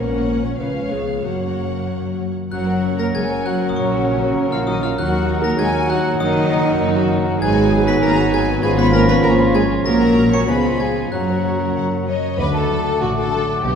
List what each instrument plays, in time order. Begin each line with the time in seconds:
Already playing: double bass section A#1, harp A#2, cello section A#3, viola section C#4, clarinet A#4, violin section C#5 F#5
0.28 harp C#4 C#5
0.44 cello section C#4, clarinet C#5
0.59 double bass section C#2, harp C#3, cello section B3, viola section C#4, clarinet B4, violin section C#5 F5
0.91 cello section G#3, viola section B3, harp C#4 C#5, clarinet G#4
1.23 harp F#2, double bass section F#2, cello section F#3, viola section A#3, clarinet F#4, violin section C#5 F#5
1.56 harp F#3
1.88 harp C#3
2.21 harp F#3
2.51 double bass section F#1, harp F#2, cello section F#3, bassoon F#3, french horn section A#3 F#4, clarinet C#4, viola section F#4, cor anglais A#4, violin section C#5 F#5, flute F#5, glockenspiel F#6
2.68 violin section A#4
2.84 harp F#3, violin section C#5
2.98 cello section A#3, viola section A#4, violin section A#4 A#5, glockenspiel A#6
3.14 double bass section F#1, harp C#3, cello section G#3, viola section G#4, violin section C#5 G#5, glockenspiel G#6
3.30 violin section A#4
3.45 cello section F#3, harp F#3, viola section F#4, violin section C#5 F#5, glockenspiel F#6
3.61 violin section A#4
3.69 glockenspiel D#6
3.76 double bass section A#1, harp A#2, cello section C#3, viola section C#4, violin section A#4 C#5, glockenspiel C#6
3.92 violin section F#4
4.07 harp F#3, violin section A#4
4.22 violin section F#4
4.37 double bass section A#1, harp A#3, violin section A#4
4.51 cello section F3, viola section F4, violin section F#4 F5, glockenspiel F6
4.67 cello section D#3, harp F#3, viola section D#4, violin section A#4 D#5, glockenspiel D#6
4.81 cello section F3, viola section F4, violin section F#4 F5, glockenspiel F6
4.96 double bass section D#2, harp D#3, cello section F#3, bassoon F#3, french horn section A#3 F#4, violin section D#4 F#5, clarinet D#4, viola section F#4, cor anglais A#4, flute F#5, glockenspiel F#6
5.13 violin section F#4
5.28 violin section D#4, harp D#4
5.42 cello section A#3, violin section F#4 A#5, viola section A#4, glockenspiel A#6
5.57 double bass section D#2, harp F#3, cello section G#3, violin section D#4 G#5, viola section G#4, glockenspiel G#6
5.73 violin section F#4
5.88 cello section F#3, violin section D#4 F#5, harp D#4, viola section F#4, glockenspiel F#6
6.04 violin section F#4
6.18 double bass section F#1, harp F#2, cello section D#3, viola section D#4, violin section D#4 D#5, glockenspiel D#6
6.36 violin section F#4
6.50 harp F#3, violin section D#4
6.65 violin section F#4
6.80 double bass section F#1, harp D#3, violin section D#4
6.95 violin section F#4
7.10 harp F#3, violin section D#4
7.25 violin section F#4
7.40 double bass section G#1, harp G#2, bassoon F#3, cello section G#3, french horn section B3 F#4, clarinet D#4, violin section G#4 G#5, viola section G#4, cor anglais B4, flute G#5, glockenspiel G#6
7.56 violin section F#4
7.71 harp F#3, violin section G#4
7.86 cello section B3, violin section F#4 B5, viola section B4, glockenspiel B6
8.00 double bass section G#1, harp D#3, cello section A#3, violin section G#4 A#5, viola section A#4, glockenspiel A#6
8.17 violin section F#4
8.32 harp F#3, cello section G#3, viola section G#4, violin section G#4 G#5, glockenspiel G#6
8.48 violin section F#4
8.62 double bass section G#1, harp G#2, bassoon F3, cello section G#3, clarinet C#4, french horn section F4, viola section G#4, violin section G#4 G#5, cor anglais C#5, flute B5, glockenspiel G#6
8.77 cello section B3, violin section F4 B5, viola section B4, glockenspiel B6
8.93 harp F3, cello section A#3, violin section G#4 A#5, viola section A#4, glockenspiel A#6
9.08 cello section B3, violin section F4 B5, viola section B4, glockenspiel B6
9.22 double bass section G#1, harp G#3, cello section A#3, violin section G#4 A#5, viola section A#4, glockenspiel A#6
9.39 violin section F4
9.53 harp F3, cello section G#3, viola section G#4, violin section G#4 G#5, glockenspiel G#6
9.70 violin section F4
9.85 double bass section A#1, harp A#2, bassoon F#3, french horn section A#3 F#4, cello section A#3, viola section A#4, violin section A#4 A#5, flute A#5, glockenspiel A#6
10.01 violin section F#4
10.17 harp C#4 A#4, violin section A#4
10.32 cello section C#4, violin section F#4 C#6, viola section C#5, glockenspiel C#7
10.47 double bass section C#2, harp C#3, bassoon F3, french horn section G#3 F4, cello section B3, violin section G#4 B5, viola section B4, flute G#5, glockenspiel B6
10.65 violin section F4
10.79 cello section G#3, harp C#4 G#4, viola section G#4, violin section G#4 G#5, glockenspiel G#6
10.97 violin section F4
11.11 double bass section F#2, harp F#2, cello section F#3, bassoon F#3, french horn section A#3 F#4, clarinet C#4, viola section F#4, cor anglais C#5, violin section C#5 F#5, flute A#5, glockenspiel F#6
11.29 violin section A#4
11.44 harp F#3, violin section C#5
11.61 violin section A#4
11.76 double bass section F#2, harp C#3, violin section F#5
12.07 harp F#3, violin section C#5 D#5
12.38 double bass section D2, harp D3, cello section D3, french horn section A3 F#4, bassoon A3, clarinet D4, violin section B4, cor anglais F#5, flute D6
12.54 violin section A4
12.60 harp D4
12.70 viola section F#3 D4
12.81 harp F#4
13.01 double bass section A1, cello section A2, violin section F#4, harp D5
13.17 violin section A4
13.22 harp A4
13.33 viola section F#3 D4
13.43 harp F#3
13.63 double bass section B1, harp B2, cello section B2, french horn section B3 G4, bassoon B3, violin section G4, cor anglais G5